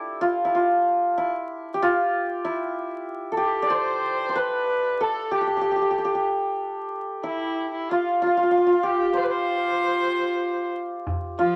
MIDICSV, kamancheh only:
0, 0, Header, 1, 2, 480
1, 0, Start_track
1, 0, Tempo, 637620
1, 1126, Time_signature, 6, 3, 24, 8
1, 8701, End_track
2, 0, Start_track
2, 0, Title_t, "Kamancheh"
2, 0, Program_c, 0, 110
2, 2581, Note_on_c, 0, 67, 71
2, 2762, Note_on_c, 0, 74, 53
2, 2773, Note_off_c, 0, 67, 0
2, 2818, Note_on_c, 0, 72, 71
2, 2829, Note_off_c, 0, 74, 0
2, 3295, Note_on_c, 0, 71, 79
2, 3307, Note_off_c, 0, 72, 0
2, 3774, Note_on_c, 0, 69, 71
2, 3785, Note_off_c, 0, 71, 0
2, 4009, Note_off_c, 0, 69, 0
2, 4014, Note_on_c, 0, 67, 61
2, 4702, Note_off_c, 0, 67, 0
2, 5446, Note_on_c, 0, 64, 63
2, 5782, Note_off_c, 0, 64, 0
2, 5817, Note_on_c, 0, 64, 57
2, 5938, Note_on_c, 0, 65, 62
2, 5949, Note_off_c, 0, 64, 0
2, 6174, Note_off_c, 0, 65, 0
2, 6183, Note_on_c, 0, 65, 67
2, 6665, Note_on_c, 0, 67, 75
2, 6676, Note_off_c, 0, 65, 0
2, 6904, Note_on_c, 0, 72, 73
2, 6915, Note_off_c, 0, 67, 0
2, 6950, Note_on_c, 0, 71, 60
2, 6961, Note_off_c, 0, 72, 0
2, 7002, Note_on_c, 0, 72, 82
2, 7013, Note_off_c, 0, 71, 0
2, 8092, Note_off_c, 0, 72, 0
2, 8572, Note_on_c, 0, 65, 61
2, 8701, Note_off_c, 0, 65, 0
2, 8701, End_track
0, 0, End_of_file